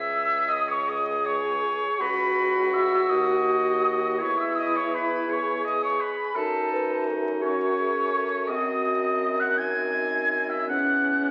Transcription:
0.00 1.95 C#2 medium
0.00 0.85 G#4 medium
0.00 0.49 E5 loud
0.00 0.54 E6 loud
0.48 0.70 D#5 medium
0.53 0.73 D#6 loud
0.68 0.90 C#5 medium
0.68 0.91 C#6 loud
0.88 2.00 G#4 medium
0.88 2.03 G#4 medium
0.88 1.27 D#5 medium
0.88 1.28 D#6 loud
1.26 2.02 C#5 medium
1.26 2.02 C#6 loud
1.99 3.08 C#2 medium
1.99 4.19 F#4 medium
1.99 4.22 F#4 medium
1.99 2.72 B4 medium
1.99 2.75 B5 loud
2.73 3.09 E5 medium
2.73 3.11 E6 loud
3.09 4.22 D#2 medium
3.09 4.20 D#5 medium
3.09 4.19 D#6 loud
4.19 6.08 E2 medium
4.19 5.26 E4 loud
4.19 6.09 E4 medium
4.19 4.40 C#5 medium
4.19 4.42 C#6 loud
4.38 4.59 E5 medium
4.38 4.57 E6 loud
4.55 4.77 D#5 medium
4.55 4.78 D#6 loud
4.76 4.96 C#5 medium
4.76 4.96 C#6 loud
4.94 5.31 B4 medium
4.94 5.34 B5 loud
5.29 6.36 G#4 medium
5.29 5.66 C#5 medium
5.29 5.65 C#6 loud
5.65 5.82 D#5 medium
5.65 5.82 D#6 loud
5.82 6.01 C#5 medium
5.82 6.03 C#6 loud
6.00 6.36 B4 medium
6.00 6.39 B5 loud
6.34 8.45 F#2 medium
6.34 7.44 D#4 medium
6.34 6.73 A4 medium
6.34 7.07 A4 medium
6.34 7.08 A5 loud
6.72 7.10 B4 medium
7.08 7.45 A4 medium
7.42 8.51 C#4 medium
7.42 7.78 F#4 medium
7.42 8.49 C#5 medium
7.42 8.51 C#6 loud
7.79 8.15 G#4 medium
8.14 8.52 A4 medium
8.48 10.71 F#2 medium
8.48 9.57 C4 medium
8.48 9.31 F#4 medium
8.48 9.42 D#5 medium
8.48 9.41 D#6 loud
9.40 9.60 F#5 medium
9.40 9.59 F#6 medium
9.58 10.66 C4 medium
9.58 10.69 D#4 medium
9.58 10.51 G#5 medium
9.58 10.48 G#6 medium
10.49 10.68 E5 medium
10.49 10.67 E6 medium
10.67 11.31 E2 medium
10.67 11.31 C#4 medium
10.67 11.31 F#5 medium
10.67 11.31 F#6 medium

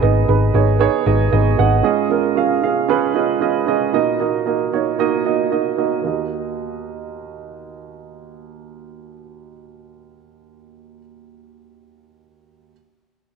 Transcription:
0.00 0.24 G#1 medium
0.00 0.02 B3 medium
0.00 0.26 B3 medium
0.00 0.02 D#4 medium
0.00 0.26 D#4 medium
0.00 0.02 G#4 medium
0.00 0.27 G#4 medium
0.00 0.03 D#5 medium
0.00 0.27 D#5 medium
0.28 0.50 G#1 medium
0.28 0.52 B3 medium
0.28 0.52 D#4 medium
0.28 0.53 G#4 medium
0.28 0.53 B4 medium
0.54 0.86 G#1 medium
0.54 0.78 B3 medium
0.54 0.79 D#4 medium
0.54 0.79 G#4 medium
0.54 0.79 C#5 medium
0.79 1.04 B3 medium
0.79 1.04 D#4 medium
0.79 1.05 G#4 medium
0.79 1.05 C#5 loud
1.06 1.28 G#1 medium
1.06 1.30 B3 medium
1.06 1.30 D#4 medium
1.06 1.31 G#4 medium
1.06 1.31 D#5 medium
1.31 1.54 G#1 medium
1.31 1.56 B3 medium
1.31 1.56 D#4 medium
1.31 1.57 G#4 medium
1.31 1.57 D#5 medium
1.57 1.80 G#1 medium
1.57 1.83 B3 medium
1.57 1.83 D#4 medium
1.57 1.82 G#4 medium
1.57 1.83 F#5 medium
1.83 2.59 G#2 medium
1.83 2.08 C#4 medium
1.83 2.09 F4 medium
1.83 2.09 G#4 medium
1.83 2.09 D#5 medium
2.10 2.34 C#4 medium
2.10 2.35 F4 medium
2.10 2.35 G#4 medium
2.10 2.36 A#4 medium
2.36 2.61 C#4 medium
2.36 2.61 F4 medium
2.36 2.62 G#4 medium
2.36 2.62 F5 medium
2.63 2.87 C#4 medium
2.63 2.87 F4 medium
2.63 2.88 G#4 medium
2.63 2.88 F5 medium
2.88 3.13 C#4 medium
2.88 3.13 F4 medium
2.88 3.13 G#4 medium
2.88 3.14 B4 loud
3.14 3.39 C#4 medium
3.14 3.39 F4 medium
3.14 3.40 G#4 medium
3.14 3.40 D#5 medium
3.41 3.65 C#4 medium
3.41 3.66 F4 medium
3.41 3.66 G#4 medium
3.41 3.66 D#5 medium
3.67 3.92 C#4 medium
3.67 3.92 F4 medium
3.67 3.93 G#4 medium
3.67 3.93 D#5 medium
3.93 4.68 A#2 medium
3.93 4.18 A#3 medium
3.93 4.18 D#4 medium
3.93 4.18 F#4 medium
3.93 4.19 D#5 medium
4.19 4.44 A#3 medium
4.19 4.45 D#4 medium
4.19 4.45 F#4 medium
4.19 4.45 D#5 medium
4.46 4.71 A#3 medium
4.46 4.71 D#4 medium
4.46 4.71 F#4 medium
4.46 4.71 D#5 medium
4.72 4.97 A#3 medium
4.72 4.97 D#4 medium
4.72 4.97 F#4 medium
4.72 4.98 C#5 medium
4.99 5.23 A#3 medium
4.99 5.23 D#4 medium
4.99 5.24 F#4 medium
4.99 5.24 D#5 medium
5.25 5.49 A#3 medium
5.25 5.50 D#4 medium
5.25 5.50 F#4 medium
5.25 5.50 D#5 medium
5.51 5.75 A#3 medium
5.51 5.76 D#4 medium
5.51 5.76 F#4 medium
5.51 5.76 D#5 medium
5.77 6.00 A#3 medium
5.77 6.02 D#4 medium
5.77 6.02 F#4 medium
5.77 6.02 D#5 medium
6.01 10.99 D#2 medium
6.01 10.96 A#3 soft
6.01 10.98 D#4 soft
6.01 11.00 F#4 soft
6.07 11.01 D#5 medium

